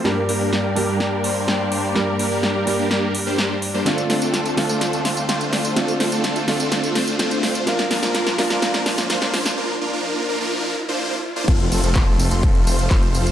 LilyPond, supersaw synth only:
\new Staff \with { instrumentName = "Supersaw synth" } { \time 4/4 \key f \major \tempo 4 = 126 <g bes d' g' bes'>16 r16 <g bes d' g' bes'>16 <g bes d' g' bes'>8. <g bes d' g' bes'>16 <g bes d' g' bes'>8. <g bes d' g' c''>8 <g bes d' g' c''>4 | <g bes d' g' bes'>16 r16 <g bes d' g' bes'>16 <g bes d' g' bes'>8. <g bes d' g' bes'>16 <g bes d' g' bes'>8. r16 <g bes d' g' c''>8 r8 <g bes d' g' c''>16 | <a c' d' f' a'>16 r16 <a c' d' f' a'>16 <a c' d' f' a'>8. <a c' d' f' a'>16 <a c' d' f' a'>8. <a c' d' f' c''>8 <a c' d' f' c''>4 | <a c' d' f' a'>16 r16 <a c' d' f' a'>16 <a c' d' f' a'>8. <a c' d' f' a'>16 <a c' d' f' a'>8. <a c' d' f' c''>8 <a c' d' f' c''>4 |
<f bes d' f' bes'>16 r16 <f bes d' f' bes'>16 <f bes d' f' bes'>8. <f bes d' f' bes'>16 <f bes d' f' bes'>8. <f bes d' f' c''>8 <f bes d' f' c''>4 | <f bes d' f' bes'>16 r16 <f bes d' f' bes'>16 <f bes d' f' bes'>8. <f bes d' f' bes'>16 <f bes d' f' bes'>8. r16 <f bes d' f' c''>8 r8 <f bes d' f' c''>16 | <f a c' f' a'>16 r16 <f a c' f' a'>16 <f a c' f' a'>8. <f a c' f' a'>16 <f a c' f' a'>8. <f a c' f' c''>8 <f a c' f' c''>4 | }